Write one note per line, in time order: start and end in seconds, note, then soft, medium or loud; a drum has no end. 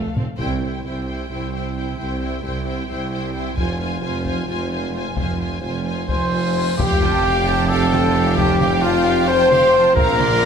0.00 0.14 A3 medium
0.00 0.15 A3 medium
0.00 0.19 A4 medium
0.00 0.20 F5 medium
0.16 0.25 F1 soft
0.16 0.24 F2 soft
0.16 0.25 C4 soft
0.16 taiko low-mid medium
0.38 0.78 C2 medium
0.38 0.79 C2 soft
0.38 1.04 C3 soft
0.38 3.52 G3 soft
0.38 3.52 E4 soft
0.38 0.61 E4 soft
0.38 0.61 C5 soft
0.38 0.61 G5 soft
0.38 taiko soft
0.62 0.85 E4 soft
0.62 0.83 C5 soft
0.62 0.85 G5 soft
0.84 1.25 C2 soft
0.84 1.26 C2 soft
0.84 1.08 E4 soft
0.84 1.06 C5 soft
0.84 1.07 G5 soft
1.07 1.31 E4 soft
1.07 1.30 C5 soft
1.07 1.30 G5 soft
1.30 1.91 C2 soft
1.30 1.53 E4 soft
1.30 1.53 C5 soft
1.30 1.53 G5 soft
1.54 1.76 E4 soft
1.54 1.75 C5 soft
1.54 1.75 G5 soft
1.76 1.98 E4 soft
1.76 1.96 C5 soft
1.76 1.98 G5 soft
1.97 2.39 C2 soft
1.97 2.20 E4 soft
1.97 2.19 C5 soft
1.97 2.21 G5 soft
2.20 2.43 E4 soft
2.20 2.42 C5 soft
2.20 2.44 G5 soft
2.43 2.84 C2 soft
2.43 2.65 E4 soft
2.43 2.65 C5 soft
2.43 2.66 G5 soft
2.66 2.88 E4 soft
2.66 2.87 C5 soft
2.66 2.89 G5 soft
2.88 3.48 C2 soft
2.88 3.49 C2 soft
2.88 3.11 E4 soft
2.88 3.11 C5 soft
2.88 3.13 G5 soft
3.12 3.33 E4 soft
3.12 3.34 C5 soft
3.12 3.34 G5 soft
3.34 3.56 E4 soft
3.34 3.56 C5 soft
3.34 3.57 G5 soft
3.56 3.96 F1 medium
3.56 3.97 F1 medium
3.56 3.97 F2 medium
3.56 6.05 G#3 medium
3.56 3.79 F4 soft
3.56 6.05 F4 medium
3.56 3.79 C5 soft
3.56 3.79 G#5 soft
3.56 taiko medium
3.80 4.02 F4 soft
3.80 4.01 C5 soft
3.80 4.02 G#5 soft
4.01 4.42 F1 medium
4.01 4.42 F2 medium
4.01 4.24 F4 soft
4.01 4.22 C5 soft
4.01 4.25 G#5 soft
4.24 4.47 F4 soft
4.24 4.47 C5 soft
4.24 4.49 G#5 soft
4.24 taiko soft
4.46 5.08 F1 medium
4.46 5.08 F2 medium
4.46 4.69 F4 soft
4.46 4.71 C5 soft
4.50 4.71 G#5 soft
4.70 4.91 F4 soft
4.70 4.93 C5 soft
4.70 4.94 G#5 soft
4.93 5.16 F4 soft
4.93 5.14 C5 soft
4.97 5.18 G#5 soft
5.15 5.56 F1 soft
5.15 5.57 F1 soft
5.15 5.57 F2 soft
5.15 5.38 F4 soft
5.15 5.37 C5 soft
5.15 taiko medium
5.15 cymbal swell soft
5.19 5.41 G#5 soft
5.38 5.62 F4 soft
5.38 5.61 C5 soft
5.38 5.62 G#5 soft
5.61 6.03 F1 soft
5.61 6.04 F1 soft
5.61 6.03 F2 soft
5.61 5.85 F4 soft
5.61 5.85 C5 soft
5.61 5.85 G#5 soft
5.86 6.07 F4 soft
5.86 6.07 C5 soft
5.86 6.08 G#5 soft
6.07 6.70 F1 medium
6.07 6.71 F1 medium
6.07 6.71 F2 medium
6.07 6.31 F4 soft
6.07 6.74 C5 medium
6.07 6.31 C5 soft
6.07 6.75 C5 medium
6.07 6.32 G#5 soft
6.07 6.75 C6 medium
6.07 taiko medium
6.32 6.55 F4 soft
6.32 6.54 C5 soft
6.32 6.56 G#5 soft
6.55 6.78 F4 medium
6.55 6.78 C5 soft
6.55 6.79 G#5 soft
6.78 9.78 F1 medium
6.78 9.93 F1 medium
6.78 9.93 F2 medium
6.78 7.71 G4 loud
6.78 7.53 G4 loud
6.78 7.01 G4 medium
6.78 7.00 F5 medium
6.78 7.70 G5 loud
6.78 7.00 G5 medium
6.78 taiko loud
6.78 sub drop medium
7.01 7.25 F4 medium
7.01 7.24 G5 medium
7.01 7.25 A5 medium
7.01 taiko mid medium
7.24 7.48 G4 medium
7.24 7.47 F5 medium
7.24 7.47 G5 medium
7.46 7.70 F4 medium
7.46 7.69 G5 medium
7.46 7.70 A5 medium
7.69 7.91 G4 medium
7.69 8.36 A4 loud
7.69 8.37 A4 loud
7.69 7.90 F5 medium
7.69 7.91 G5 medium
7.69 8.37 A5 loud
7.92 8.15 F4 medium
7.92 8.15 G5 medium
7.92 8.16 A5 medium
7.92 taiko mid medium
8.15 8.38 G4 medium
8.15 8.38 F5 medium
8.15 8.38 G5 medium
8.37 8.61 F4 medium
8.37 8.83 G4 loud
8.37 8.85 G5 loud
8.37 8.61 G5 medium
8.37 8.61 A5 medium
8.37 taiko loud
8.60 8.82 G4 medium
8.60 8.81 F5 medium
8.60 8.82 G5 medium
8.60 taiko mid medium
8.82 9.29 F4 loud
8.82 9.27 F4 loud
8.82 9.06 F4 medium
8.82 9.30 F5 loud
8.82 9.06 G5 medium
8.82 9.06 A5 medium
9.05 9.29 G4 medium
9.05 9.28 F5 medium
9.05 9.29 G5 medium
9.27 9.52 F4 medium
9.27 9.96 C5 loud
9.27 9.95 C5 loud
9.27 9.51 G5 medium
9.27 9.52 A5 medium
9.27 9.96 C6 loud
9.51 9.73 G4 medium
9.51 9.73 F5 medium
9.51 9.73 G5 medium
9.51 taiko mid medium
9.73 9.97 F4 medium
9.73 9.96 G5 medium
9.73 9.98 A5 medium
9.94 10.45 A#1 loud
9.94 10.45 A#1 medium
9.94 10.45 A#2 loud
9.94 10.18 C4 medium
9.94 10.45 A#4 loud
9.94 10.18 F5 medium
9.94 10.45 A#5 loud
9.94 10.19 A#5 medium
9.94 taiko loud
10.18 10.42 D4 medium
10.18 10.41 D5 medium
10.18 10.43 C6 medium
10.18 taiko mid medium
10.42 10.45 C4 medium
10.42 10.45 F5 medium
10.42 10.45 A#5 medium